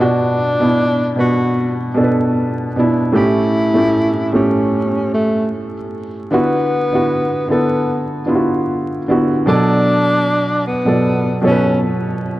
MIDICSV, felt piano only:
0, 0, Header, 1, 2, 480
1, 0, Start_track
1, 0, Time_signature, 4, 2, 24, 8
1, 0, Tempo, 789474
1, 7538, End_track
2, 0, Start_track
2, 0, Title_t, "Felt piano"
2, 0, Program_c, 0, 0
2, 0, Control_c, 0, 64, 127
2, 0, Note_on_c, 0, 47, 80
2, 0, Note_on_c, 0, 50, 62
2, 0, Note_on_c, 0, 59, 81
2, 0, Note_on_c, 0, 64, 68
2, 2, Note_on_c, 0, 62, 78
2, 8, Note_on_c, 0, 66, 90
2, 318, Note_off_c, 0, 47, 0
2, 320, Note_off_c, 0, 59, 0
2, 323, Note_off_c, 0, 62, 0
2, 327, Note_off_c, 0, 66, 0
2, 364, Note_on_c, 0, 47, 71
2, 370, Note_on_c, 0, 59, 61
2, 376, Note_on_c, 0, 62, 64
2, 382, Note_off_c, 0, 64, 0
2, 382, Note_on_c, 0, 64, 75
2, 673, Note_off_c, 0, 47, 0
2, 676, Note_off_c, 0, 59, 0
2, 679, Note_off_c, 0, 62, 0
2, 682, Note_off_c, 0, 64, 0
2, 705, Note_on_c, 0, 47, 64
2, 712, Note_on_c, 0, 59, 55
2, 717, Note_on_c, 0, 62, 57
2, 723, Note_on_c, 0, 71, 74
2, 1138, Note_off_c, 0, 47, 0
2, 1141, Note_off_c, 0, 59, 0
2, 1144, Note_off_c, 0, 62, 0
2, 1147, Note_off_c, 0, 71, 0
2, 1181, Note_on_c, 0, 47, 76
2, 1188, Note_on_c, 0, 59, 63
2, 1194, Note_on_c, 0, 62, 72
2, 1199, Note_on_c, 0, 69, 61
2, 1239, Note_on_c, 0, 71, 81
2, 1243, Note_off_c, 0, 69, 0
2, 1616, Note_off_c, 0, 47, 0
2, 1619, Note_off_c, 0, 59, 0
2, 1622, Note_off_c, 0, 62, 0
2, 1645, Note_off_c, 0, 71, 0
2, 1680, Note_on_c, 0, 47, 63
2, 1685, Note_on_c, 0, 59, 65
2, 1692, Note_on_c, 0, 62, 71
2, 1699, Note_on_c, 0, 64, 82
2, 1892, Note_off_c, 0, 47, 0
2, 1895, Note_off_c, 0, 59, 0
2, 1898, Note_off_c, 0, 62, 0
2, 1899, Note_on_c, 0, 45, 80
2, 1902, Note_off_c, 0, 64, 0
2, 1904, Note_on_c, 0, 57, 75
2, 1912, Note_on_c, 0, 61, 74
2, 1917, Note_on_c, 0, 67, 99
2, 1926, Control_c, 0, 64, 0
2, 1931, Note_off_c, 0, 50, 0
2, 2048, Control_c, 0, 64, 127
2, 2232, Note_off_c, 0, 45, 0
2, 2235, Note_off_c, 0, 57, 0
2, 2238, Note_off_c, 0, 61, 0
2, 2241, Note_off_c, 0, 67, 0
2, 2274, Note_on_c, 0, 45, 78
2, 2280, Note_on_c, 0, 57, 68
2, 2287, Note_on_c, 0, 61, 58
2, 2293, Note_on_c, 0, 67, 75
2, 2588, Note_off_c, 0, 45, 0
2, 2591, Note_off_c, 0, 57, 0
2, 2595, Note_off_c, 0, 61, 0
2, 2598, Note_off_c, 0, 67, 0
2, 2631, Note_on_c, 0, 45, 64
2, 2637, Note_on_c, 0, 57, 67
2, 2643, Note_on_c, 0, 61, 61
2, 2649, Note_on_c, 0, 67, 71
2, 3487, Note_off_c, 0, 45, 0
2, 3490, Note_off_c, 0, 57, 0
2, 3493, Note_off_c, 0, 61, 0
2, 3496, Note_off_c, 0, 67, 0
2, 3835, Note_on_c, 0, 50, 83
2, 3841, Note_on_c, 0, 59, 78
2, 3846, Control_c, 0, 64, 0
2, 3847, Note_on_c, 0, 64, 73
2, 3854, Note_on_c, 0, 66, 93
2, 3965, Control_c, 0, 64, 127
2, 4160, Note_off_c, 0, 50, 0
2, 4163, Note_off_c, 0, 59, 0
2, 4166, Note_off_c, 0, 64, 0
2, 4169, Note_off_c, 0, 66, 0
2, 4209, Note_on_c, 0, 50, 70
2, 4215, Note_on_c, 0, 59, 58
2, 4221, Note_on_c, 0, 64, 67
2, 4226, Note_on_c, 0, 66, 84
2, 4516, Note_off_c, 0, 50, 0
2, 4519, Note_off_c, 0, 59, 0
2, 4522, Note_off_c, 0, 64, 0
2, 4524, Note_off_c, 0, 66, 0
2, 4550, Note_on_c, 0, 50, 74
2, 4557, Note_on_c, 0, 59, 61
2, 4563, Note_on_c, 0, 64, 56
2, 4569, Note_on_c, 0, 69, 72
2, 4981, Note_off_c, 0, 50, 0
2, 4984, Note_off_c, 0, 59, 0
2, 4987, Note_off_c, 0, 64, 0
2, 4990, Note_off_c, 0, 69, 0
2, 5022, Note_on_c, 0, 50, 67
2, 5027, Note_on_c, 0, 59, 65
2, 5034, Note_on_c, 0, 64, 70
2, 5040, Note_on_c, 0, 65, 62
2, 5079, Note_on_c, 0, 66, 66
2, 5083, Note_off_c, 0, 65, 0
2, 5456, Note_off_c, 0, 50, 0
2, 5459, Note_off_c, 0, 59, 0
2, 5462, Note_off_c, 0, 64, 0
2, 5485, Note_off_c, 0, 66, 0
2, 5521, Note_on_c, 0, 50, 80
2, 5527, Note_on_c, 0, 59, 76
2, 5532, Note_on_c, 0, 64, 70
2, 5540, Note_on_c, 0, 66, 84
2, 5733, Note_off_c, 0, 50, 0
2, 5736, Note_off_c, 0, 59, 0
2, 5738, Note_off_c, 0, 64, 0
2, 5742, Note_off_c, 0, 66, 0
2, 5751, Note_on_c, 0, 47, 82
2, 5758, Note_on_c, 0, 54, 97
2, 5764, Control_c, 0, 64, 0
2, 5765, Note_on_c, 0, 69, 87
2, 5771, Note_on_c, 0, 74, 101
2, 5859, Control_c, 0, 64, 127
2, 6489, Note_off_c, 0, 47, 0
2, 6493, Note_off_c, 0, 54, 0
2, 6496, Note_off_c, 0, 69, 0
2, 6499, Note_off_c, 0, 74, 0
2, 6598, Note_on_c, 0, 47, 60
2, 6603, Note_on_c, 0, 54, 58
2, 6610, Note_on_c, 0, 69, 58
2, 6616, Note_on_c, 0, 74, 66
2, 6910, Note_off_c, 0, 47, 0
2, 6913, Note_off_c, 0, 54, 0
2, 6916, Note_off_c, 0, 69, 0
2, 6919, Note_off_c, 0, 74, 0
2, 6942, Note_on_c, 0, 47, 74
2, 6949, Note_on_c, 0, 54, 68
2, 6954, Note_on_c, 0, 69, 64
2, 6961, Note_on_c, 0, 73, 65
2, 7000, Note_on_c, 0, 71, 82
2, 7004, Note_off_c, 0, 73, 0
2, 7538, Note_off_c, 0, 47, 0
2, 7538, Note_off_c, 0, 54, 0
2, 7538, Note_off_c, 0, 69, 0
2, 7538, Note_off_c, 0, 71, 0
2, 7538, End_track
0, 0, End_of_file